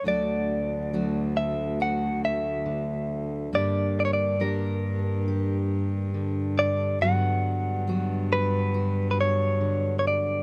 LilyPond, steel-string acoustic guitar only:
\new Staff \with { instrumentName = "Steel-string acoustic guitar" } { \time 4/4 \key d \major \tempo 4 = 69 << { <fis a fis'>4 <fis a fis'>4 fis'2 | <bes d' g'>4 <bes d' g'>4 g'2 | <fis b fis'>4 <fis b fis'>4 fis'2 | } \\ { d,2. d4 | g,2. d4 | g,2. d4 | } >> }